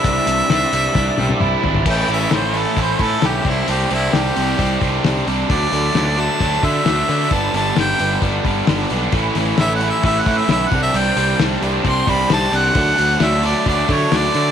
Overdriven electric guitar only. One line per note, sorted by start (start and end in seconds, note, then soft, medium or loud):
0.00 0.50 G3 soft
0.00 0.49 D4 medium
0.00 0.73 E4 medium
0.05 1.19 C3 medium
0.51 0.95 D4 medium
0.73 1.17 G3 medium
0.96 1.62 D4 medium
1.19 1.86 G3 medium
1.40 1.86 E4 medium
1.63 1.86 D4 medium
1.85 2.07 A2 medium
1.85 2.08 E3 medium
1.85 2.08 A3 medium
1.85 2.09 C#4 medium
1.85 2.10 E4 loud
2.09 2.30 A2 medium
2.09 2.30 E3 medium
2.09 2.31 A3 medium
2.09 2.31 C#4 medium
2.09 2.31 E4 medium
2.31 2.52 A2 medium
2.31 2.53 E3 medium
2.31 2.53 A3 medium
2.31 2.53 C#4 medium
2.31 2.54 E4 medium
2.54 2.76 A2 medium
2.54 2.76 E3 medium
2.54 2.77 A3 medium
2.54 2.77 C#4 medium
2.54 2.77 E4 medium
2.77 2.97 A2 medium
2.77 2.98 E3 medium
2.77 2.99 A3 medium
2.77 2.99 C#4 medium
2.77 2.99 E4 medium
2.98 3.20 A2 medium
2.98 3.21 E3 medium
2.98 3.22 A3 medium
2.98 3.22 C#4 medium
2.98 3.22 E4 medium
3.21 3.43 A2 loud
3.21 3.44 E3 medium
3.21 3.44 A3 medium
3.21 3.44 C#4 loud
3.21 3.45 E4 medium
3.44 3.66 C3 medium
3.44 3.66 G3 medium
3.44 3.67 C4 medium
3.44 3.68 D4 medium
3.67 3.89 C3 medium
3.67 3.90 G3 medium
3.67 3.90 C4 loud
3.67 3.91 D4 loud
3.90 4.11 C3 medium
3.90 4.12 G3 medium
3.90 4.12 C4 medium
3.90 4.14 D4 medium
4.12 4.34 C3 medium
4.12 4.34 G3 medium
4.12 4.35 C4 medium
4.12 4.36 D4 medium
4.35 4.56 C3 medium
4.35 4.57 G3 medium
4.35 4.57 C4 medium
4.35 4.58 D4 medium
4.57 4.79 C3 medium
4.57 4.80 G3 medium
4.57 4.80 C4 medium
4.57 4.82 D4 medium
4.81 5.03 C3 medium
4.81 5.03 G3 medium
4.81 5.04 C4 medium
4.81 5.05 D4 medium
5.04 5.27 C3 medium
5.04 5.27 G3 medium
5.04 5.27 C4 medium
5.04 5.29 D4 loud
5.28 5.49 C3 medium
5.28 5.49 G3 medium
5.28 5.49 C4 medium
5.28 5.51 D4 medium
5.50 5.72 D3 medium
5.50 5.72 F#3 loud
5.50 5.73 A3 loud
5.50 5.74 D4 loud
5.73 5.94 D3 medium
5.73 5.95 F#3 medium
5.73 5.95 A3 medium
5.73 5.97 D4 medium
5.95 6.16 D3 medium
5.95 6.16 F#3 medium
5.95 6.18 A3 medium
5.95 6.19 D4 medium
6.17 6.40 D3 medium
6.17 6.40 F#3 medium
6.17 6.41 A3 medium
6.17 6.41 D4 medium
6.41 6.61 D3 medium
6.41 6.62 F#3 medium
6.41 6.63 A3 medium
6.41 6.63 D4 medium
6.63 6.84 D3 medium
6.63 6.85 F#3 medium
6.63 6.86 A3 medium
6.63 6.86 D4 medium
6.86 7.08 D3 medium
6.86 7.08 F#3 medium
6.86 7.09 A3 loud
6.86 7.09 D4 loud
7.09 7.30 D3 medium
7.09 7.30 F#3 medium
7.09 7.31 A3 medium
7.09 7.31 D4 medium
7.30 7.53 G2 medium
7.30 7.54 D3 medium
7.30 7.54 G3 loud
7.30 7.55 B3 medium
7.30 7.55 D4 medium
7.54 7.75 G2 medium
7.54 7.75 D3 medium
7.54 7.76 G3 medium
7.54 7.76 B3 medium
7.54 7.77 D4 medium
7.76 7.97 G2 medium
7.76 7.98 D3 medium
7.76 7.99 G3 medium
7.76 7.99 B3 medium
7.76 7.99 D4 medium
7.99 8.20 G2 medium
7.99 8.20 D3 medium
7.99 8.22 G3 medium
7.99 8.22 B3 medium
7.99 8.22 D4 medium
8.21 8.43 G2 medium
8.21 8.44 D3 medium
8.21 8.45 G3 medium
8.21 8.45 B3 medium
8.21 8.45 D4 medium
8.44 8.66 G2 medium
8.44 8.67 D3 medium
8.44 8.67 G3 medium
8.44 8.68 B3 medium
8.44 8.68 D4 medium
8.67 8.90 G2 medium
8.67 8.90 D3 loud
8.67 8.91 G3 medium
8.67 8.91 B3 medium
8.67 8.92 D4 loud
8.91 9.12 G2 medium
8.91 9.12 D3 medium
8.91 9.13 G3 medium
8.91 9.13 B3 medium
8.91 9.13 D4 medium
9.13 9.35 A2 medium
9.13 9.36 E3 medium
9.13 9.36 A3 loud
9.13 9.36 C#4 medium
9.13 9.37 E4 medium
9.36 9.58 A2 medium
9.36 9.58 E3 medium
9.36 9.59 A3 medium
9.36 9.60 C#4 medium
9.36 9.60 E4 medium
9.59 9.79 A2 medium
9.59 9.80 E3 medium
9.59 9.81 A3 medium
9.59 9.81 C#4 medium
9.59 9.82 E4 medium
9.80 10.02 A2 medium
9.80 10.02 E3 medium
9.80 10.03 A3 medium
9.80 10.04 C#4 medium
9.80 10.04 E4 medium
10.04 10.24 A2 medium
10.04 10.24 E3 medium
10.04 10.25 A3 medium
10.04 10.26 C#4 medium
10.04 10.26 E4 medium
10.25 10.47 A2 medium
10.25 10.47 E3 medium
10.25 10.48 A3 medium
10.25 10.48 C#4 medium
10.25 10.49 E4 medium
10.48 10.70 A2 medium
10.48 10.70 E3 medium
10.48 10.70 A3 medium
10.48 10.71 C#4 medium
10.48 10.71 E4 loud
10.72 10.93 C3 medium
10.72 10.94 G3 medium
10.72 10.94 C4 medium
10.72 10.96 D4 loud
10.94 11.15 C3 medium
10.94 11.16 G3 loud
10.94 11.16 C4 loud
10.94 11.18 D4 loud
11.17 11.38 C3 medium
11.17 11.38 G3 medium
11.17 11.39 C4 medium
11.17 11.40 D4 medium
11.39 11.61 C3 medium
11.39 11.61 G3 medium
11.39 11.62 C4 medium
11.39 11.63 D4 loud
11.62 11.83 C3 medium
11.62 11.84 G3 medium
11.62 11.84 C4 medium
11.62 11.84 D4 medium
11.84 12.06 C3 medium
11.84 12.07 G3 medium
11.84 12.07 C4 medium
11.84 12.08 D4 medium
12.07 12.28 C3 medium
12.07 12.29 G3 medium
12.07 12.29 C4 medium
12.07 12.30 D4 medium
12.29 12.50 C3 loud
12.29 12.51 G3 medium
12.29 12.51 C4 loud
12.29 12.52 D4 loud
12.52 12.74 C3 medium
12.52 12.74 G3 medium
12.52 12.74 C4 medium
12.52 12.74 D4 medium
12.74 12.96 D3 medium
12.74 12.97 F#3 medium
12.74 12.97 A3 medium
12.74 12.98 D4 loud
12.97 13.18 D3 medium
12.97 13.19 F#3 medium
12.97 13.19 A3 medium
12.97 13.19 D4 medium
13.20 13.41 D3 medium
13.20 13.42 F#3 medium
13.20 13.42 A3 medium
13.20 13.43 D4 medium
13.43 13.65 D3 medium
13.43 13.65 F#3 medium
13.43 13.66 A3 medium
13.43 13.67 D4 loud
13.66 13.87 D3 medium
13.66 13.88 F#3 medium
13.66 13.88 A3 medium
13.66 13.88 D4 medium
13.88 14.10 D3 medium
13.88 14.10 F#3 medium
13.88 14.11 A3 medium
13.88 14.11 D4 medium
14.11 14.33 D3 loud
14.11 14.34 F#3 loud
14.11 14.35 A3 loud
14.11 14.35 D4 loud
14.34 14.52 D3 medium
14.34 14.52 F#3 medium
14.34 14.52 A3 medium
14.34 14.52 D4 medium